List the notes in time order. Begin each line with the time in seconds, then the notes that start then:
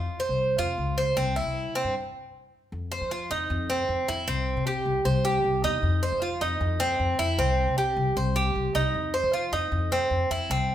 Already playing: F4
0.20 C5
0.29 C2
0.58 F2 F4
0.78 C#2
0.98 C5
1.17 C2 C4
1.36 E4
1.45 C2
1.75 C4
1.84 G2
2.72 F2
2.92 C5
3.01 F3
3.11 F4
3.30 F2 D#4
3.50 F2
3.70 C4
3.89 F2
4.08 F2 E4
4.28 C2 C4
4.57 C3
4.67 G4
4.86 C2
5.05 C2 C5
5.25 G4
5.44 C2
5.64 E2 D#4
5.83 F2
6.03 C5
6.12 F3
6.22 F4
6.41 F2 D#4
6.61 F2
6.80 C4
6.99 F2
7.19 F2 E4
7.38 C2 C4
7.68 C3
7.78 G4
7.97 C2
8.16 C2 C5
8.36 G4
8.55 C2
8.75 C2 D#4
8.94 F2
9.14 C5
9.23 F3
9.33 F4
9.52 F2 D#4
9.72 F2
9.92 C4
10.11 F2
10.30 F2 E4
10.50 C2 C4